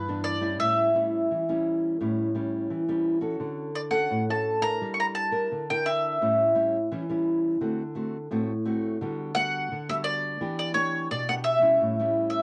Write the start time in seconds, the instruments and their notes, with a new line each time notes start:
Already playing: nylon-string guitar G2, mandolin B4
0.08 nylon-string guitar E3 B3 D4
0.24 mandolin D5
0.41 nylon-string guitar G3 C#4 E4
0.60 nylon-string guitar A2, mandolin E5
0.95 nylon-string guitar G3 C#4 E4
1.31 nylon-string guitar E3
1.49 nylon-string guitar G3 C#4 E4
2.01 nylon-string guitar A2 G3 C#4 E4
2.35 nylon-string guitar G3 C#4 E4
2.70 nylon-string guitar E3
2.88 nylon-string guitar G3 C#4 E4
3.21 nylon-string guitar C#4 F#4 A4
3.40 nylon-string guitar D3
3.75 mandolin D5
3.91 nylon-string guitar C#4 F#4 A4, mandolin F#5
4.11 nylon-string guitar A2
4.29 nylon-string guitar C#4 F#4 A4, mandolin A5
4.61 nylon-string guitar D4 E4 A#4, mandolin A#5
4.81 nylon-string guitar G3
4.94 mandolin C#6
5.00 mandolin A#5
5.15 mandolin A5
5.31 nylon-string guitar D4 E4 A#4
5.51 nylon-string guitar D3
5.70 nylon-string guitar D4 E4 A#4, mandolin G5
5.86 mandolin E5
6.21 nylon-string guitar A2 G3 C#4 E4
6.55 nylon-string guitar G3 C#4 E4
6.91 nylon-string guitar E3 G3 C#4 E4
7.09 nylon-string guitar G3 C#4 E4
7.61 nylon-string guitar D3 A3 C4 F#4
7.95 nylon-string guitar A3 C4 F#4
8.31 nylon-string guitar A2 A3 C4 F#4
8.66 nylon-string guitar A3 C4 F#4
9.01 nylon-string guitar D3 G3 B3 F#4
9.35 nylon-string guitar G3 B3 F#4, mandolin F#5
9.72 nylon-string guitar D3
9.89 nylon-string guitar G3 B3 F#4, mandolin E5
10.04 mandolin D5
10.41 nylon-string guitar E3 B3 D4 G4
10.59 mandolin D5
10.74 nylon-string guitar B3 D4 G4, mandolin C#5
11.11 nylon-string guitar B2, mandolin D5
11.29 nylon-string guitar B3 D4 G4, mandolin F#5
11.44 mandolin E5
11.61 nylon-string guitar G3 C#4 E4
11.81 nylon-string guitar A2
11.99 nylon-string guitar G3 C#4 E4
12.30 mandolin E5